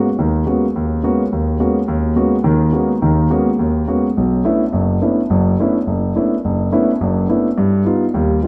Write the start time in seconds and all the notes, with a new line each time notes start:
0.19 D#2 D#3
0.46 G#3 A#3 B3 C#4 F#4
0.76 D#2
1.03 G#3 A#3 B3 C#4 F#4
1.32 D#2
1.59 G#3 A#3 B3 C#4 F#4
1.88 D#2
2.16 G#3 A#3 B3 C#4 F#4
2.44 D#2 D#3
2.73 G#3 A#3 B3 C#4 F#4
3.02 D#2 D#3
3.30 G#3 A#3 B3 C#4 F#4
3.59 D#2
3.88 G#3 A#3 B3 C#4 F#4
4.17 B1
4.45 A3 B3 C#4 D4 E4
4.73 F#1 F#2
5.02 A3 B3 C#4 D4 E4
5.30 F#1 F#2
5.60 A3 B3 C#4 D4 E4
5.87 F#1
6.16 A3 B3 C#4 D4 E4
6.45 F#1
6.72 A3 B3 C#4 D4 E4
7.01 F#1 F#2
7.29 A3 B3 C#4 D4 E4
7.58 G2
7.85 G3 B3 D#4 F4
8.14 D#2 G3
8.42 G3 B3 D#4 F4